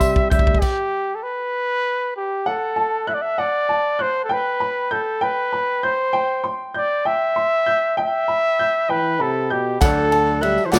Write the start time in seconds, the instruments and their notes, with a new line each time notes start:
Already playing: upright piano C2 C3 G3 C4 E4 C5 G5 G6, fingered electric bass C3, twelve-string acoustic guitar C3 E3 G3 E4 G4, french horn G3, trumpet E5
0.00 upright piano C6, kick, closed hi-hat, tambourine
0.16 kick
0.30 fingered electric bass D2, french horn G3, twelve-string acoustic guitar G3 E4 G4, trumpet E5, upright piano G6, kick, closed hi-hat
0.39 kick
0.47 kick
0.55 kick
0.61 trumpet G4, kick, crash
1.15 trumpet A4
1.23 trumpet B4
2.17 trumpet G4
2.46 trumpet A4, upright piano F#5
2.76 upright piano A5
3.07 trumpet E5, upright piano F#6
3.14 trumpet D5
3.22 trumpet E5
3.38 trumpet D5, upright piano F#5
3.69 upright piano A5
3.99 trumpet C5, upright piano F#6
4.25 trumpet A4
4.29 trumpet B4, upright piano G5
4.60 upright piano B5
4.91 trumpet A4, upright piano G6
5.21 trumpet B4, upright piano G5
5.53 upright piano B5
5.83 trumpet C5, upright piano G6
6.13 upright piano G5
6.44 upright piano C6
6.74 trumpet D5, upright piano G6
7.05 trumpet E5, upright piano G5
7.36 upright piano C6
7.66 upright piano G6
7.97 trumpet E5, upright piano G5
8.28 upright piano B5
8.59 upright piano G6
8.89 french horn E3, trumpet B4, upright piano G5
9.20 french horn C3, trumpet A4, upright piano B5
9.50 french horn B2, trumpet G4, upright piano G6
9.80 fingered electric bass D2, upright piano D2 D3 F#3 A3 D4 A4 D5 F#5, twelve-string acoustic guitar D3 F#3 A3 D4 F#4, french horn D3, trumpet A4, kick, clap, ride, tambourine
10.11 upright piano A5, ride
10.27 clap
10.41 twelve-string acoustic guitar F#3 A3 D4 F#4, french horn G3, trumpet E5, upright piano F#6, ride
10.58 tambourine
10.66 french horn E3, trumpet C5
10.71 fingered electric bass D2, twelve-string acoustic guitar D3 F#3 A3 D4 F#4, upright piano F#3 A3 D4 A4 D5 F#5, french horn F#3, trumpet D5, snare, clap, ride, tambourine